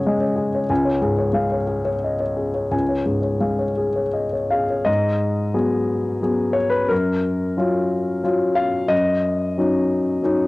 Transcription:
Already playing: F#2 C#3 G#3 G#4 C#5 F#5 G#5
0.06 G#3 D#5
0.20 C#5
0.36 G#4
0.55 C#5
0.70 C#2 G#5
0.85 C#5
1.02 G#2 G#4
1.18 C#5
1.33 G#3 F5
1.52 C#5
1.67 G#4
1.85 C#5
2.04 D#5
2.20 C#5
2.37 G#4
2.54 C#5
2.71 C#2 G#5
2.89 C#5
3.06 G#2 G#4
3.22 C#5
3.40 G#3 F5
3.59 C#5
3.77 G#4
3.96 C#5
4.13 D#5
4.33 C#5
4.50 G#4 F5
4.70 C#5
4.85 G#2 D#5
5.54 F#3 B3 G#4
6.22 F#3 B3 G#4
6.53 C#5
6.70 B4
6.88 F#2 A#4
7.57 F#3 C#4 F4
8.24 F#3 C#4 F4
8.55 F5
8.88 F#2 D#5
9.58 F#3 C#4 D#4
10.23 F#3 C#4 D#4

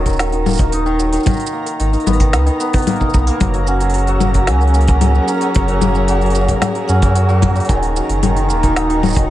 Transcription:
Already playing: D#1 D#3 F#3 A#3 C#4 D#4 F#4 A#4 A#5
0.06 kick, open hi-hat, shaker
0.09 shaker
0.13 shaker
0.16 D#3, snare, open hi-hat, shaker
0.20 shaker
0.23 shaker
0.26 shaker
0.29 D#3, open hi-hat, shaker
0.33 shaker
0.46 A#3, low conga, shaker
0.48 shaker
0.51 shaker
0.53 shaker
0.55 shaker
0.57 kick, open hi-hat, shaker
0.59 D#3, shaker
0.72 D#4, open hi-hat, shaker
0.86 D#3, shaker
0.99 F#3, shaker
1.13 D#3, open hi-hat, shaker
1.16 shaker
1.20 shaker
1.23 D#3, open hi-hat, low conga, shaker
1.26 kick, shaker
1.30 shaker
1.33 shaker
1.37 open hi-hat, shaker
1.40 shaker
1.46 shaker
1.53 A#3
1.66 open hi-hat, shaker
1.80 G#1 D#3, open hi-hat, shaker
1.93 D#3, open hi-hat, shaker
2.00 open hi-hat
2.06 G#1 B3, open hi-hat, low conga, shaker
2.13 open hi-hat
2.20 D#3, kick, open hi-hat, shaker
2.33 C#2 D#4, snare, open hi-hat, shaker
2.46 D#3, open hi-hat, shaker
2.60 B3, shaker
2.73 B3, kick, open hi-hat
2.78 open hi-hat
2.82 open hi-hat
2.87 A#3, open hi-hat, low conga, shaker
2.92 open hi-hat
2.96 open hi-hat
3.00 D#4, kick, shaker
3.10 B3, shaker
3.14 B1, kick, shaker
3.27 A#3, open hi-hat, shaker
3.40 F#1 F#3, kick, open hi-hat, low conga, shaker
3.54 F#3, open hi-hat, shaker
3.59 C#4
3.67 C#4 F#5, shaker
3.80 F#3, open hi-hat, shaker
3.90 G#4, open hi-hat
3.94 F#4, open hi-hat
3.98 open hi-hat
4.07 F#3, open hi-hat, shaker
4.20 A#3 A#4, low conga, shaker
4.34 F#3, kick, open hi-hat, shaker
4.47 C#2 F#3 G#5, snare, open hi-hat, shaker
4.61 open hi-hat, shaker
4.67 open hi-hat
4.74 A#3, open hi-hat, shaker
4.81 open hi-hat
4.88 kick, open hi-hat, shaker
5.01 F#3, open hi-hat, low conga, shaker
5.15 F#3, shaker
5.28 C#4 A#5, shaker
5.41 F#3, open hi-hat, shaker
5.55 F#1 F#4, kick, open hi-hat, shaker
5.68 F#3, open hi-hat
5.81 A#3, low conga, shaker
5.95 F#3, shaker
6.08 F#3 F#5, open hi-hat, shaker
6.21 open hi-hat, shaker
6.26 open hi-hat
6.30 open hi-hat
6.35 A#3, shaker
6.48 kick, open hi-hat, shaker
6.62 F#3, snare, open hi-hat, low conga, shaker
6.75 F#3, open hi-hat, shaker
6.88 F#2 C#4 F#5, shaker
7.02 F#3, kick, open hi-hat, shaker
7.15 F#4, open hi-hat, shaker
7.29 F#3, shaker
7.42 A#3, kick, low conga, shaker
7.55 F#3, open hi-hat, shaker
7.60 open hi-hat
7.65 G#5, open hi-hat
7.69 D#1 D#3, kick, open hi-hat, shaker
7.79 D#4, open hi-hat, shaker
7.96 F#3, shaker
8.09 F#1, open hi-hat
8.23 D#3, open hi-hat, low conga, shaker
8.36 D#3, open hi-hat, shaker
8.49 D#1 A#3 A#5, shaker
8.63 D#3 F#4, kick, open hi-hat, shaker
8.76 D#4, snare, open hi-hat, shaker
8.90 D#3, open hi-hat, shaker
9.03 F#3, low conga, shaker
9.06 shaker
9.08 shaker
9.10 shaker
9.13 shaker
9.14 D#3, kick, open hi-hat, shaker
9.17 shaker

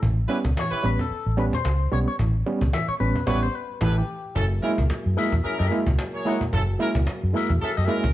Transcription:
0.02 A1 A2 E3, cajon bass
0.28 G3 B3 C#4 E4 G4 B4, cajon slap
0.44 C#2 B3 C#4, cajon bass
0.57 A2 E3 C#5, cajon slap
0.71 E4 G4 B4, muted fingered electric bass stroke
0.83 A1 G3 B3 C#4 B4, cajon slap
0.99 B3 C#4 A4, cajon bass
1.11 muted fingered electric bass stroke, cajon slap
1.26 A1, cajon slap
1.37 G3 B3 C#4 B4, cajon slap
1.53 C5, cajon bass, cajon slap
1.65 C#2, cajon slap
1.80 cajon slap
1.92 B1 G3 B3 C#4 C#5, cajon slap
2.07 C#5, cajon slap
2.19 A1 A2 E3, cajon bass
2.46 G3 B3 C#4, cajon slap
2.61 C#2 B3 C#4, cajon bass
2.73 A2 E3 E5, cajon slap
2.88 C#5, muted fingered electric bass stroke
3.00 A1 G3 B3 C#4 B4
3.15 B3 C#4, cajon bass
3.27 A1 G3 B3 C#4 E4 G4 B4 C#5, cajon bass, cajon slap
3.43 C5
3.55 B4
3.81 A1 A2 E3 E4 G4 A4 B4, cajon bass, cajon slap
3.98 G4
4.35 F#1 F#3 A#3 C#4 E4 G#4 A4, cajon bass
4.62 G#3 A#3 C#4 E4 A#4, cajon slap
4.78 C#2 A#3 E4, cajon bass
4.90 F#3, muted fingered electric bass stroke, cajon slap
5.05 F#2, cajon slap
5.17 G#3 A#3 E4 G#4 A#4 E5, cajon slap
5.32 E2 A#3 E4, cajon bass
5.44 C#4 E4 G#4 A#4 E5, muted fingered electric bass stroke, cajon slap
5.59 F#2 G#4 A#4 E5, cajon slap
5.71 G#3 A#3 E4
5.86 C#2, cajon bass, cajon slap
5.99 cajon slap
6.13 G#4 A#4 C#5, cajon slap
6.25 G#3 A#3 E4 G#4 A#4 F#5, cajon slap
6.40 cajon bass, cajon slap
6.52 F#1 F#3 C#4 E4 F#4 A4, cajon bass
6.79 G#3 A#3 C#4 E4 A#4, cajon slap
6.95 C#2 A#3 E4, cajon bass
7.06 F#3, muted fingered electric bass stroke, cajon slap
7.22 F#2, cajon slap
7.33 G#3 A#3 E4 G#4 A#4 E5, cajon slap
7.49 E2 A#3 E4, cajon bass
7.61 C#4 E4 G#4 A4 A#4 E5, muted fingered electric bass stroke, cajon slap
7.77 F#2 G#4 A#4 E5, cajon slap
7.88 G#3 A#3 C#4 E4 A#4
8.04 C#2, cajon bass, cajon slap

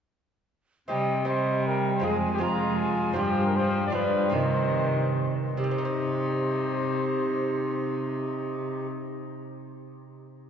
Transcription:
0.88 C3 G3 C4 G4 D#5 G5
1.25 G3 C4 G4 C5 D#5
1.66 A#4 G5
1.95 C5
2.00 F2 G#3 C4 F4
2.04 F2 G#3 G#4 G#5
2.34 G4
2.38 G#3 C4 F4
2.43 G#3 A#5
2.78 G#5
3.13 G2 F3 C4 F4 G4 G5
3.46 A#4
3.56 F3 C5
3.86 D5
3.90 G2 F3 D4 F4 B4 D5
4.30 C3 D#3 C4 D#4 C5
4.34 D#5
5.56 C3 D#4 G4 C5
5.64 G3
5.71 C4
5.78 D#4
5.85 C5

